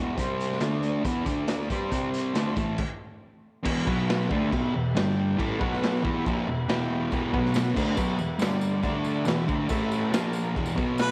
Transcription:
Already playing: E2 B2 E3
0.14 C3 G3 C4 G4 C5, kick, closed hi-hat
0.19 C4
0.40 closed hi-hat
0.52 snare
0.59 D3 A3 D4 A4 D5, snare, closed hi-hat
0.83 closed hi-hat
1.04 E3 B3 E4, kick, closed hi-hat
1.22 D3 A3 D4 A4 D5, kick, closed hi-hat
1.27 D4
1.48 snare, closed hi-hat
1.66 G3 C4 G4, kick, closed hi-hat
1.71 D4 G4 C5
1.91 C3 G3 C4, kick, closed hi-hat
2.14 closed hi-hat
2.34 D3 A3 D4, snare, closed hi-hat
2.56 A2 E3 A3, kick, closed hi-hat
2.78 kick, crash
3.63 E2 B2 E3, kick, crash
3.84 B2 F#3 B3 F#4 B4 F#5, kick
4.09 snare, crash
4.21 snare
4.30 D3 A3 D4 G4 B4 E5, kick
4.52 B2 F#3 B3, kick, crash
4.74 E2 B2
4.95 G2 D3 G3 G4 D5 G5, snare, crash
5.37 A2 E3 A3, kick, crash
5.58 B2 F#3 B3 F#4 B4 F#5, kick
5.73 snare
5.83 snare, crash
5.95 G4, snare
6.00 E3 B3 B4 E5
6.04 E4, kick
6.25 A#2 F3 A#3, kick, crash
6.47 E2 B2 E5
6.69 E2 B2 E3 G5, snare, crash
7.11 E2 B2 E3, kick, tambourine, crash
7.31 B2 F#3 B3 F#4 B4 F#5, kick
7.46 snare
7.54 snare, tambourine, crash
7.67 snare
7.74 D3 A3 D4 G4 B4 E5, kick, tambourine, crash
7.96 B2 F#3 B3, kick, tambourine, crash
8.19 E2 B2, tambourine
8.39 G2 D3 G3 D4 G4, snare, tambourine, crash
8.43 D5
8.61 tambourine
8.82 D3 A3 D4 A4 D5, kick, tambourine, crash
9.04 tambourine
9.23 E2 B2 E3 G4 B4 E5, tambourine
9.28 snare, crash
9.40 snare
9.47 D3 A3 D4 D5, kick, tambourine
9.68 A2 E3 A3 E4 A4 E5, kick, tambourine
9.72 crash
9.92 tambourine
10.00 G5
10.11 A#2 F3 A#3 F4 A#4 F5 A5, snare, tambourine, crash
10.33 tambourine
10.43 A#5
10.55 E2 B2 E3, kick, crash
10.66 tambourine
10.75 B2 F#3 B3, kick, tambourine
10.98 B4, snare, tambourine, crash

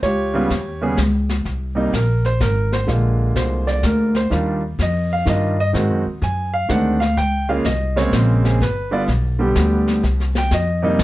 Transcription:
0.03 C#2 F4 G4 C#5, brush sweep, kick, snare
0.34 C#3 G3 B3 F4
0.50 D#2, kick, snare, hi-hat pedal
0.81 C#3 G3 B3 G#4
0.97 C#2, kick, snare, hi-hat pedal
1.29 snare
1.45 C2, brush sweep, kick, snare
1.75 C3 G3 A#3 D#4
1.93 A#1 A#4, kick, snare, hi-hat pedal
2.25 C5, snare
2.40 G#1 A#4, kick, snare, hi-hat pedal
2.72 C5, snare
2.87 A#1 D3 G#3 A#3 F4, brush sweep, kick, snare
3.36 C2 C5, kick, snare, hi-hat pedal
3.67 D5, snare
3.83 D2 A#4, kick, snare, hi-hat pedal
4.15 C5, snare
4.30 D#2 D#3 G3 D4 F4, brush sweep, kick, snare
4.79 F2 D#5, kick, snare, hi-hat pedal
5.13 F5
5.25 G2 D#3 G3 D4 F4 D#5, kick, snare, hi-hat pedal
5.60 D#5
5.73 G#2 D#3 G#3 C4 F#4, brush sweep, kick, snare
5.90 F#2
6.05 D#2
6.22 F#2 G#5, kick, snare
6.54 F5
6.69 D2 D#3 G#3 C4 D4 F#5, kick, snare, hi-hat pedal
7.00 F5, snare
7.17 C#2 G5, brush sweep, kick, snare
7.49 C#3 G#3 A#3 F4 F5
7.65 C2 D#5, kick, snare, hi-hat pedal
7.96 C#3 G#3 A#3 C4 C#5, snare
8.13 A#1 C5, kick, snare, hi-hat pedal
8.45 G#4, snare
8.60 G1 B4, brush sweep, kick, snare
8.91 D3 G3 B3 F4 D5
9.08 B1, kick, snare
9.39 D3 G3 B3 G4
9.55 D2, kick, snare, hi-hat pedal
9.88 snare
10.03 C2, brush sweep, kick, snare
10.20 snare
10.35 G5, snare
10.51 F2 D#5, kick, snare, hi-hat pedal
10.82 C3 G3 A#3 D#4
10.99 G2, kick, snare, hi-hat pedal

